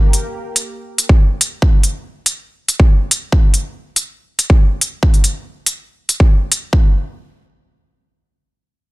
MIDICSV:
0, 0, Header, 1, 2, 480
1, 0, Start_track
1, 0, Tempo, 425532
1, 1830, Time_signature, 4, 2, 24, 8
1, 10061, End_track
2, 0, Start_track
2, 0, Title_t, "Drums"
2, 150, Note_on_c, 9, 42, 70
2, 263, Note_off_c, 9, 42, 0
2, 630, Note_on_c, 9, 42, 69
2, 743, Note_off_c, 9, 42, 0
2, 1110, Note_on_c, 9, 42, 65
2, 1223, Note_off_c, 9, 42, 0
2, 1234, Note_on_c, 9, 36, 55
2, 1346, Note_off_c, 9, 36, 0
2, 1589, Note_on_c, 9, 42, 69
2, 1702, Note_off_c, 9, 42, 0
2, 1829, Note_on_c, 9, 36, 104
2, 1942, Note_off_c, 9, 36, 0
2, 2069, Note_on_c, 9, 42, 70
2, 2182, Note_off_c, 9, 42, 0
2, 2550, Note_on_c, 9, 42, 69
2, 2663, Note_off_c, 9, 42, 0
2, 3029, Note_on_c, 9, 42, 68
2, 3142, Note_off_c, 9, 42, 0
2, 3154, Note_on_c, 9, 36, 56
2, 3266, Note_off_c, 9, 36, 0
2, 3510, Note_on_c, 9, 42, 72
2, 3622, Note_off_c, 9, 42, 0
2, 3750, Note_on_c, 9, 36, 100
2, 3862, Note_off_c, 9, 36, 0
2, 3990, Note_on_c, 9, 42, 70
2, 4103, Note_off_c, 9, 42, 0
2, 4470, Note_on_c, 9, 42, 69
2, 4583, Note_off_c, 9, 42, 0
2, 4950, Note_on_c, 9, 42, 69
2, 5063, Note_off_c, 9, 42, 0
2, 5074, Note_on_c, 9, 36, 51
2, 5187, Note_off_c, 9, 36, 0
2, 5430, Note_on_c, 9, 42, 72
2, 5543, Note_off_c, 9, 42, 0
2, 5670, Note_on_c, 9, 36, 106
2, 5783, Note_off_c, 9, 36, 0
2, 5795, Note_on_c, 9, 42, 32
2, 5908, Note_off_c, 9, 42, 0
2, 5910, Note_on_c, 9, 42, 75
2, 6023, Note_off_c, 9, 42, 0
2, 6390, Note_on_c, 9, 42, 76
2, 6502, Note_off_c, 9, 42, 0
2, 6869, Note_on_c, 9, 42, 72
2, 6982, Note_off_c, 9, 42, 0
2, 6994, Note_on_c, 9, 36, 53
2, 7107, Note_off_c, 9, 36, 0
2, 7350, Note_on_c, 9, 42, 72
2, 7463, Note_off_c, 9, 42, 0
2, 7590, Note_on_c, 9, 36, 101
2, 7702, Note_off_c, 9, 36, 0
2, 10061, End_track
0, 0, End_of_file